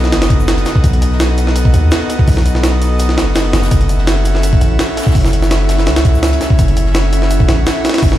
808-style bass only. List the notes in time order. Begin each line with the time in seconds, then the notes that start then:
Already playing: B1
0.12 F#1
0.84 B1
1.74 D#2
2.28 B1
3.18 F#1
3.54 F#1
3.71 F#1
4.61 A1
5.15 F#1
5.87 C#2
6.59 F#1
7.49 A1
8.03 F#1